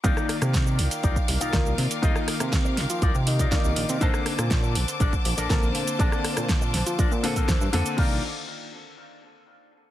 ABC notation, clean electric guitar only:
X:1
M:4/4
L:1/16
Q:1/4=121
K:Cdor
V:1 name="Clean electric guitar"
[EFBd]2 z6 [EFBd] z2 [EFBf]3 z2 | [EFBe]2 z6 [EFBd] z2 [EFBd]3 z2 | [DABc]2 z6 [DABd] z2 [DABd]3 z2 | [DABd]2 z6 [DABd] z2 [DABc]3 z2 |
[EFBd]2 z12 z2 |]